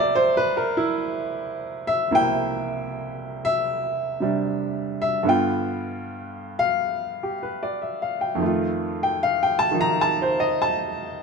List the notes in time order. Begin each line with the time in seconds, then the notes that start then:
Already playing: C2 C3 A#3 E4 C5 D5 E5 G5
0.15 C5
0.37 B4
0.57 A#4
0.77 E4
1.87 E5
2.11 C2 C3 A#3 E4
2.15 G5
3.45 E5
4.20 C3 G3 D4
5.02 E5
5.23 G2 D3 B3
5.28 F4 G5
6.59 F5
7.23 G4
7.43 B4
7.63 D5
7.82 E5
8.02 F5
8.21 G5
8.35 F2 D#3
8.42 A3 F4
9.03 G5
9.23 F5
9.43 G5
9.59 A5
9.71 D#3 F3 D#4
9.81 A#5
10.01 A5
10.22 C5
10.40 D#5
10.62 A5